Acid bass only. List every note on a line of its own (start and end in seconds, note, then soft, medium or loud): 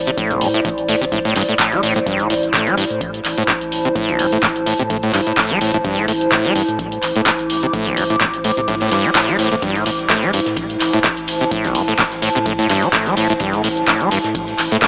0.07 0.11 C3 medium
0.18 0.32 A2 medium
0.31 0.43 A1 medium
0.41 0.48 A2 medium
0.54 0.60 A2 medium
0.65 0.69 A2 loud
0.88 0.96 A2 medium
1.01 1.05 C3 medium
1.12 1.19 A2 loud
1.25 1.34 A2 loud
1.36 1.43 G2 loud
1.49 1.55 A2 medium
1.59 1.74 A2 medium
1.72 1.81 A3 medium
1.83 1.94 A2 medium
1.96 1.99 A2 loud
2.06 2.21 G2 medium
2.19 2.28 A2 medium
2.30 2.34 A2 medium
2.54 2.68 A2 medium
2.67 2.76 A3 medium
2.77 2.85 G2 medium
3.38 3.44 A2 loud
3.48 3.53 A2 loud
3.85 3.88 C3 medium
3.95 4.10 A2 medium
4.09 4.21 A1 medium
4.19 4.26 A2 medium
4.32 4.38 A2 medium
4.43 4.47 A2 loud
4.66 4.74 A2 medium
4.79 4.83 C3 medium
4.90 4.97 A2 medium
5.03 5.12 A2 loud
5.14 5.21 G2 loud
5.27 5.33 A2 medium
5.37 5.52 A2 medium
5.50 5.59 A3 medium
5.61 5.72 A2 medium
5.74 5.77 A2 loud
5.84 5.99 G2 medium
5.97 6.06 A2 medium
6.08 6.12 A2 medium
6.32 6.46 A2 medium
6.45 6.54 A3 medium
6.55 6.63 G2 medium
7.16 7.21 A2 loud
7.26 7.31 A2 loud
7.63 7.66 C3 medium
7.73 7.88 A2 medium
7.86 7.99 A1 medium
7.97 8.04 A2 medium
8.10 8.16 A2 medium
8.21 8.25 A2 loud
8.44 8.52 A2 medium
8.57 8.61 C3 medium
8.68 8.75 A2 medium
8.81 8.90 A2 loud
8.92 9.06 G2 loud
9.05 9.10 A3 medium
9.15 9.30 A2 medium
9.28 9.37 A3 medium
9.39 9.50 A2 medium
9.52 9.55 A2 loud
9.62 9.77 G2 medium
9.75 9.84 A2 loud
9.86 9.90 A2 medium
10.10 10.24 A2 medium
10.23 10.31 A3 medium
10.33 10.40 G2 medium
10.93 10.99 A2 loud
11.04 11.08 A2 loud
11.41 11.44 C3 medium
11.51 11.66 A2 medium
11.64 11.76 A1 medium
11.75 11.82 A2 medium
11.88 11.94 A2 medium
11.99 12.03 A2 loud
12.22 12.29 A2 medium
12.35 12.39 C3 medium
12.46 12.53 A2 medium
12.59 12.68 A2 loud
12.69 12.84 G2 loud
12.82 12.88 A3 medium
12.93 13.08 A2 medium
13.06 13.15 A3 medium
13.17 13.27 A2 medium
13.30 13.33 A2 loud
13.40 13.55 G2 loud
13.53 13.62 A2 loud
13.64 13.68 A2 medium
13.88 14.02 A2 medium
14.01 14.09 A3 medium
14.11 14.18 G2 medium
14.71 14.77 A2 loud
14.82 14.86 A2 loud